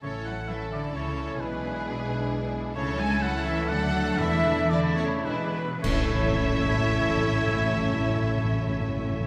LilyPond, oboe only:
\new Staff \with { instrumentName = "Oboe" } { \time 3/4 \key a \major \tempo 4 = 119 cis''8 fis''8 e''8 d''8 cis''4 | b'2~ b'8 r8 | cis''8 gis''8 fis''8 e''8 fis''4 | e''4 d''8 cis''8 b'4 |
cis''2.~ | cis''2. | }